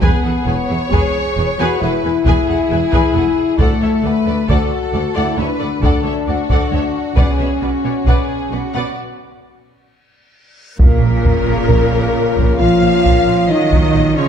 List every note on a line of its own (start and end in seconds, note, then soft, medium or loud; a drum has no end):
0.00 0.09 E1 medium
0.00 0.09 E2 medium
0.00 0.90 B3 medium
0.00 0.46 G#4 medium
0.00 0.22 G#4 medium
0.00 0.23 B4 medium
0.00 0.23 G#5 medium
0.00 taiko medium
0.23 0.31 E2 medium
0.23 0.31 G#4 medium
0.23 0.31 A4 soft
0.23 0.33 F#5 medium
0.46 0.55 E1 medium
0.46 0.54 E2 medium
0.46 0.55 G#4 medium
0.46 0.55 B4 medium
0.46 1.81 C#5 medium
0.46 0.56 G#5 medium
0.69 0.77 E2 medium
0.69 0.78 G#4 soft
0.69 0.79 E5 soft
0.91 1.00 E1 medium
0.91 1.00 E2 medium
0.91 1.59 G#4 medium
0.91 1.14 G#4 medium
0.91 1.13 B4 medium
0.91 1.13 G#5 medium
0.91 taiko medium
1.36 1.46 E1 medium
1.36 1.44 E2 medium
1.36 1.46 G#4 soft
1.36 1.46 B4 medium
1.36 1.46 G#5 medium
1.59 1.67 E2 medium
1.59 1.81 F#4 medium
1.59 1.80 G#4 medium
1.59 1.80 B4 medium
1.59 1.80 G#5 medium
1.81 1.90 E1 medium
1.81 1.89 E2 medium
1.81 3.59 E4 loud
1.81 1.90 G#4 soft
1.81 1.90 A4 medium
1.81 2.26 B4 medium
1.81 1.90 F#5 medium
2.03 2.12 E2 medium
2.03 2.13 G#4 soft
2.03 2.12 B4 medium
2.03 2.11 G#5 soft
2.25 2.34 E1 medium
2.25 2.34 E2 medium
2.25 2.46 G#4 medium
2.25 3.57 G#4 medium
2.25 2.47 B4 medium
2.25 2.47 G#5 medium
2.25 taiko medium
2.47 2.57 E2 medium
2.47 2.55 G#4 medium
2.47 2.56 A4 soft
2.47 2.57 F#5 medium
2.70 2.79 E1 medium
2.70 2.80 E2 soft
2.70 2.78 G#4 medium
2.70 2.79 B4 medium
2.70 2.80 G#5 medium
2.91 3.01 E2 medium
2.91 3.13 G#4 medium
2.91 3.13 B4 medium
2.91 3.14 G#5 medium
2.91 taiko medium
3.14 3.23 E1 medium
3.14 3.23 E2 medium
3.14 3.22 G#4 medium
3.14 3.22 A4 soft
3.14 3.24 F#5 medium
3.58 3.67 D2 medium
3.58 4.48 A3 medium
3.58 3.79 A4 medium
3.58 4.05 A4 medium
3.58 3.79 D5 medium
3.58 3.80 F#5 medium
3.58 taiko medium
3.80 3.90 D2 medium
3.80 3.89 A4 soft
3.80 3.88 C#5 medium
3.80 3.91 E5 soft
4.02 4.12 D2 soft
4.02 4.12 D2 medium
4.02 4.10 A4 soft
4.02 4.49 B4 medium
4.02 4.10 D5 soft
4.02 4.13 F#5 soft
4.25 4.35 D2 medium
4.25 4.34 A4 soft
4.25 4.35 D5 medium
4.47 4.57 D2 medium
4.47 4.58 D2 medium
4.47 5.14 F#4 medium
4.47 4.69 A4 medium
4.47 5.37 A4 medium
4.47 4.69 D5 medium
4.47 4.71 F#5 medium
4.47 taiko medium
4.93 5.01 D2 medium
4.93 5.02 D2 medium
4.93 5.01 A4 soft
4.93 5.01 D5 medium
4.93 5.03 F#5 medium
5.14 5.24 D2 medium
5.14 5.38 E4 medium
5.14 5.35 A4 medium
5.14 5.35 D5 medium
5.14 5.37 F#5 medium
5.37 5.45 D2 medium
5.37 5.47 D2 medium
5.37 7.12 D4 medium
5.37 5.45 A4 soft
5.37 5.83 B4 medium
5.37 5.46 C#5 soft
5.37 5.47 E5 soft
5.59 5.69 D2 soft
5.59 5.67 A4 soft
5.59 5.67 D5 medium
5.59 5.69 F#5 soft
5.81 5.90 D2 medium
5.81 6.03 A4 medium
5.81 6.27 A4 medium
5.81 6.03 D5 medium
5.81 6.04 F#5 medium
5.81 taiko medium
6.04 6.13 D2 soft
6.04 6.12 A4 medium
6.04 6.12 C#5 medium
6.04 6.14 E5 medium
6.26 6.35 D2 soft
6.26 6.36 D2 soft
6.26 7.16 F#4 medium
6.26 6.35 A4 soft
6.26 6.34 D5 soft
6.26 6.37 F#5 soft
6.50 6.58 D2 medium
6.50 6.70 A4 medium
6.50 6.70 D5 medium
6.50 6.71 F#5 medium
6.50 taiko medium
6.71 6.79 D2 soft
6.71 6.81 D2 soft
6.71 6.79 A4 soft
6.71 6.80 C#5 medium
6.71 6.83 E5 medium
7.15 7.23 B1 medium
7.15 7.26 B2 medium
7.15 8.97 C#4 medium
7.15 7.61 G#4 medium
7.15 7.37 B4 medium
7.15 7.37 D5 medium
7.15 7.38 F#5 medium
7.15 taiko medium
7.15 reverse cymbal medium
7.38 7.48 B2 soft
7.38 7.46 B4 soft
7.38 7.46 C#5 soft
7.38 7.48 E5 soft
7.61 7.69 B1 soft
7.61 7.70 B2 soft
7.61 8.06 F#4 soft
7.61 7.70 B4 soft
7.61 7.70 D5 soft
7.61 7.70 F#5 soft
7.84 7.93 B2 soft
7.84 7.93 B4 soft
7.84 7.92 C#5 soft
7.84 7.93 D5 soft
8.05 8.13 B1 medium
8.05 8.15 B2 medium
8.05 8.51 G#4 medium
8.05 8.28 B4 medium
8.05 8.28 D5 medium
8.05 8.27 F#5 medium
8.05 taiko medium
8.51 8.59 B1 soft
8.51 8.60 B2 soft
8.51 8.97 F#4 medium
8.51 8.61 B4 soft
8.51 8.61 D5 soft
8.51 8.60 F#5 soft
8.74 8.82 B2 medium
8.74 8.96 B4 soft
8.74 8.96 D5 medium
8.74 8.95 F#5 medium
10.78 10.87 A#1 medium
10.78 12.56 A#2 medium
10.78 12.57 C#3 medium
10.78 12.56 A#3 medium
10.78 14.28 C#4 medium
10.78 14.28 F4 medium
10.78 12.56 A#4 medium
10.78 12.61 A#4 medium
10.78 12.56 A#4 medium
10.78 taiko medium
10.78 sub drop medium
11.01 11.09 A#1 medium
11.24 11.32 A#1 soft
11.24 taiko low medium
11.46 11.54 A#1 soft
11.68 11.76 A#1 medium
11.68 taiko medium
11.91 11.99 A#1 medium
12.37 12.45 A#1 medium
12.37 taiko medium
12.59 12.68 A#1 medium
12.59 13.48 F3 medium
12.59 13.49 A#3 medium
12.59 13.49 F4 medium
12.59 13.52 F5 medium
12.59 13.50 F5 medium
12.82 12.90 A#1 soft
13.04 13.12 A#1 medium
13.04 taiko medium
13.26 13.34 A#1 medium
13.49 14.16 D#3 medium
13.49 14.15 F#3 medium
13.49 14.16 D#4 medium
13.49 14.15 D#5 medium
13.49 14.17 D#5 medium
13.49 14.18 D#5 medium
13.71 13.79 A#1 medium
13.71 taiko medium
13.94 14.02 A#1 medium
14.16 14.28 C#3 medium
14.16 14.28 F3 medium
14.16 14.28 C#4 medium
14.16 14.28 C#5 medium